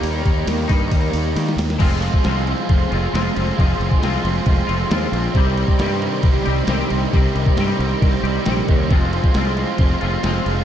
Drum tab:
CC |----------------|x-x-x-x-x-x-x-x-|x-x-x-x-x-x-x-x-|x-x-x-x-x-x-x-x-|
RD |x-x-x-x-x-x-x-x-|----------------|----------------|----------------|
SD |----o-------oooo|----o-------o---|----o-------o---|----o-------o---|
BD |--o---o-o-------|o--o----o-------|o--o----o-------|o--o----o-------|

CC |x-x-x-x-x-x-x-x-|x-x-x-x-x-x-x-x-|
RD |----------------|----------------|
SD |----o-------o---|----o-------o---|
BD |o--o----o-----o-|o--o----o-------|